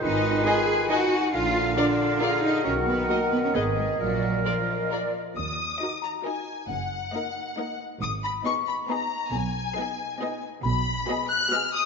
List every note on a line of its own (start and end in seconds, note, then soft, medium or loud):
0.01 0.39 G#1 medium
0.01 1.05 D#3 medium
0.01 0.45 D#4 medium
0.01 0.91 F4 medium
0.01 1.06 B4 medium
0.01 0.45 D#5 medium
0.01 1.31 G#5 medium
0.46 0.90 G#4 medium
0.46 0.55 B4 soft
0.46 0.55 D#5 soft
0.46 0.89 G#5 medium
0.46 0.55 G#5 medium
0.89 1.35 D#4 medium
0.89 1.33 F#4 medium
0.89 0.98 B4 medium
0.89 0.98 D#5 medium
0.89 0.99 D#5 soft
0.89 1.33 F#5 medium
0.89 0.99 G#5 soft
1.33 1.70 A#1 medium
1.33 2.67 D3 medium
1.33 1.77 D4 medium
1.33 1.76 F4 medium
1.33 3.56 A#4 medium
1.33 2.63 F5 medium
1.33 1.77 F5 medium
1.77 2.20 D4 medium
1.77 2.20 F4 medium
1.77 1.85 A#4 soft
1.77 1.85 D5 medium
1.77 2.21 D5 medium
1.77 1.85 F5 medium
2.20 2.43 F4 medium
2.20 2.66 G#4 medium
2.20 2.28 A#4 soft
2.20 2.29 D5 soft
2.20 2.43 F5 medium
2.20 2.30 F5 soft
2.43 2.65 D#4 medium
2.43 2.65 D#5 medium
2.64 3.02 B1 medium
2.64 3.99 D#3 medium
2.64 2.73 C#4 medium
2.64 3.26 F#4 medium
2.64 2.72 C#5 medium
2.64 3.55 F#5 medium
2.87 3.09 B3 medium
2.87 3.09 B4 medium
3.09 3.17 A#3 medium
3.09 3.17 F#4 soft
3.09 3.17 A#4 soft
3.09 3.32 A#4 medium
3.09 3.19 D#5 soft
3.31 3.43 B3 medium
3.31 3.43 B4 soft
3.43 3.49 C#4 medium
3.43 3.54 C#5 soft
3.54 3.92 G#1 medium
3.54 3.62 B3 medium
3.54 3.62 G#4 soft
3.54 4.00 G#4 soft
3.54 3.96 B4 medium
3.54 3.62 B4 soft
3.54 3.62 B4 medium
3.54 4.00 D#5 soft
3.54 3.64 D#5 soft
3.77 3.86 G#3 medium
3.77 3.99 G#4 soft
3.99 4.38 A#1 soft
3.99 5.12 A#2 soft
3.99 4.45 F#3 medium
3.99 4.45 F#4 medium
3.99 5.11 A#4 soft
3.99 5.12 A#4 medium
3.99 4.41 D5 soft
4.45 5.15 F3 soft
4.45 4.53 F4 soft
4.45 5.13 F4 soft
4.45 4.53 A#4 soft
4.45 4.54 D5 soft
4.45 4.51 F5 medium
4.91 4.99 F4 soft
4.91 4.99 A#4 soft
4.91 5.00 A#4 soft
4.91 5.14 D5 soft
4.91 5.00 D5 soft
5.37 5.72 D#2 medium
5.37 5.99 D#6 soft
5.37 5.99 D#6 medium
5.81 6.14 D#4 soft
5.81 6.14 F#4 soft
5.81 6.14 A#4 soft
5.81 6.14 D#5 soft
6.02 6.23 A#5 medium
6.02 6.11 A#5 medium
6.25 6.58 D#4 soft
6.25 6.58 F#4 soft
6.25 6.58 A#4 soft
6.25 6.58 D#5 soft
6.25 6.66 G#5 soft
6.25 6.68 G#5 medium
6.68 7.04 F#1 soft
6.68 7.04 F#2 medium
6.68 7.75 F#5 soft
6.68 7.77 F#5 medium
7.14 7.47 A#3 soft
7.14 7.47 D#4 soft
7.14 7.47 A#4 soft
7.14 7.47 D#5 soft
7.58 7.91 A#3 soft
7.58 7.91 D#4 medium
7.58 7.91 A#4 soft
7.58 7.91 D#5 soft
8.01 8.36 G#1 medium
8.01 8.37 G#2 medium
8.01 8.22 D#6 medium
8.01 8.10 D#6 medium
8.24 8.32 B5 medium
8.24 8.45 B5 medium
8.45 8.78 B3 soft
8.45 8.78 D#4 soft
8.45 8.79 G#4 medium
8.45 8.79 D#5 soft
8.45 8.53 C#6 medium
8.45 8.66 C#6 medium
8.67 8.75 B5 medium
8.67 8.88 B5 medium
8.89 9.22 B3 soft
8.89 9.22 D#4 soft
8.89 9.22 G#4 medium
8.89 9.22 D#5 medium
8.89 9.32 A#5 medium
8.89 9.30 A#5 medium
9.32 9.67 B1 medium
9.32 9.67 B2 medium
9.32 10.38 G#5 soft
9.32 10.42 G#5 medium
9.77 10.09 B3 medium
9.77 10.09 D#4 medium
9.77 10.09 G#4 medium
9.77 10.10 D#5 medium
10.21 10.53 B3 medium
10.21 10.53 D#4 medium
10.21 10.54 G#4 medium
10.21 10.54 D#5 medium
10.63 10.99 B1 medium
10.63 10.99 B2 medium
10.63 11.25 B5 medium
10.63 11.26 B5 medium
11.08 11.41 B3 medium
11.08 11.41 F#4 medium
11.08 11.41 G#4 medium
11.08 11.41 D#5 medium
11.29 11.50 F#6 medium
11.29 11.52 F#6 medium
11.51 11.84 B3 medium
11.51 11.84 F#4 medium
11.51 11.85 G#4 medium
11.51 11.85 D#5 medium
11.51 11.74 F6 medium
11.51 11.72 F6 medium
11.74 11.85 D#6 medium